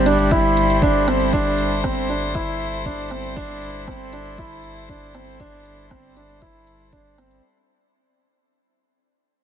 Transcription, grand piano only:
0.06 D4
0.31 E4
0.83 D4
1.08 C4
1.33 D4
1.84 C4
2.10 D4
2.35 E4
2.86 D4
3.11 C4
3.36 D4
3.88 C4
4.13 D4
4.39 E4
4.89 D4
5.15 C4
5.40 D4
5.91 C4
6.16 D4
6.42 E4
6.93 D4
7.18 C4

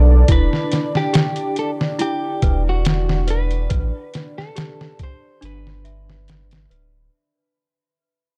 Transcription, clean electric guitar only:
Already playing: A4
0.32 B4
0.97 G4
1.59 A4
2.01 G4
2.69 F#4
3.30 B4
4.38 A4
5.03 C5
5.45 B4

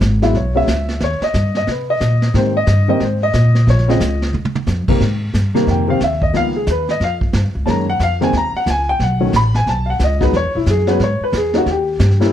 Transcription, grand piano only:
0.22 F#3 G#3 B3 E4 E5
0.37 C#5
0.55 F#3 G#3 B3 C#4 E5
1.04 C#5
1.23 D#5
1.57 D#5
1.71 B4
1.90 D#5
2.34 D#3 G3 A#3 C4 C5
2.57 D#5
2.88 D#3 G3 A#3 C4 D#5
3.04 C5
3.23 D#5
3.70 C#5
3.88 C#3 F3 G#3 C4 D#5
4.89 C3 D#3 G3 A#3
5.55 C3 D#3 G3 A#3
5.71 G5
5.88 C3 D#3 G3 C4 F5
6.04 E5
6.23 D#5
6.33 D#3 F3 A#3 B3 F5
6.56 G#4
6.71 B4
6.91 D#5
7.04 F5
7.66 D#3 G#3 A#3 C#4 A5
7.70 A#5
7.90 F#5
8.03 F5
8.21 D#3 G#3 A#3 C4 G#5
8.37 A#5
8.57 F#5
8.70 G#5
8.89 G5
9.03 F#5
9.20 D#3 F#3 A3 C#4
9.36 B5
9.56 G#5
9.69 A5
9.86 F5
9.90 F#5
10.04 D#5
10.21 F#3 G#3 B3 D#4 B4
10.37 C#5
10.56 E4
10.70 G#4
10.87 F#3 G#3 B3 C#4 B4
11.04 C#5
11.24 B4
11.37 G#4
11.54 G3 A#3 C#4 D#4 F#4
11.71 G4
12.20 G3 A#3 C#4 E4

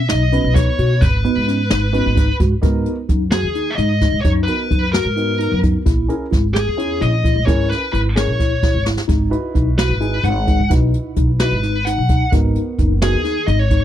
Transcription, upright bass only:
0.10 B1
0.44 B1
0.79 B2
1.02 G#1
1.36 G#2
1.71 G#1
2.06 G#1
2.40 G#2
2.63 G#2
3.09 F#2
3.43 D#2
3.78 G#2
4.12 G#2
4.25 F#2
4.71 F#2
5.05 G#2
5.52 F#2
5.86 A#1
6.32 G#1
6.68 E2
7.01 A#1
7.36 A#2
7.48 G#1
7.93 G#1
8.27 A#1
8.74 G#1
9.09 G#1
9.55 B1
9.89 G#1
10.23 G#1
10.59 G#2
10.71 B1
11.17 B1
11.51 G#1
11.98 B1
12.33 G#1
12.79 F#1
13.13 D#2
13.48 G#1

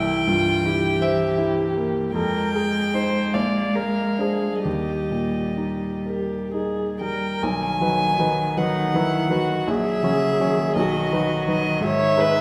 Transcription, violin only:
Already playing: G5
1.02 E5
2.14 G5
3.34 F5
4.63 D#5
7.00 G5
7.42 G#5
8.57 F#5
9.68 E5
10.76 D#5
11.48 D#5
11.84 E5

